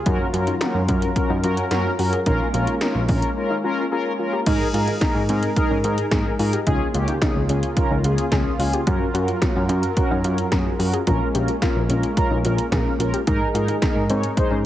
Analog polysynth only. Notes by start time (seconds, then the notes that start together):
0.06 C#4 F#4 A#4
0.34 C#4 F#4 A#4
0.61 C#4 F#4 A#4
0.88 C#4 F#4 A#4
1.16 C#4 F#4 A#4
1.44 C#4 F#4 A#4
1.71 C#4 F#4 A#4
1.99 C#4 F#4 A#4
2.26 C#4 F4 A#4
2.54 C#4 F4 A#4
2.81 C#4 F4 A#4
3.09 C#4 F4 A#4
3.36 C#4 F4 A#4
3.64 C#4 F4 A#4
3.91 C#4 F4 A#4
4.19 C#4 F4 A#4
4.46 D#4 G#4 A#4
4.74 D#4 G#4 A#4
5.01 D#4 G#4 A#4
5.29 D#4 G#4 A#4
5.56 D#4 G#4 A#4
5.84 D#4 G#4 A#4
6.12 D#4 G#4 A#4
6.39 D#4 G#4 A#4
6.67 C#4 F4 G#4
6.94 C#4 F4 G4
7.22 C#4 F4 G#4
7.49 C#4 F4 G#4
7.77 C#4 F4 A#4
8.04 C#4 F4 G#4
8.32 C#4 F4 G#4
8.59 C#4 F4 G#4
8.87 C#4 F#4 A#4
9.14 C#4 F#4 A#4
9.42 C#4 F#4 A#4
9.69 C#4 F#4 A#4
9.97 C#4 F#4 A#4
10.24 C#4 F#4 A#4
10.52 C#4 F#4 G#4
10.79 C#4 F#4 A#4
11.07 C#4 F4 A#4
11.34 C#4 F4 A#4
11.62 C#4 F4 A#4
11.89 C#4 F4 A#4
12.17 C#4 F4 A#4
12.44 C#4 F4 A#4
12.72 C#4 F4 A#4
13.00 C#4 F4 A#4
13.27 D#4 G#4 A#4
13.55 D#4 G#4 A#4
13.82 D#4 G#4 A#4
14.10 D#4 G#4 C#5
14.37 D#4 G#4 C5